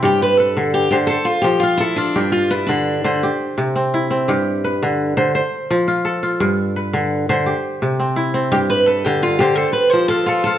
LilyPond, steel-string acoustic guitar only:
\new Staff \with { instrumentName = "Steel-string acoustic guitar" } { \time 12/8 \key g \mixolydian \tempo 4. = 113 g'8 b'8 a'4 g'8 g'8 a'8 f'8 g'8 f'8 e'8 d'8~ | d'8 f'8 e'8 d'4. r2. | r1. | r1. |
g'8 b'8 a'8 g'8 f'8 g'8 a'8 b'8 c''8 a'8 f'8 a'8 | }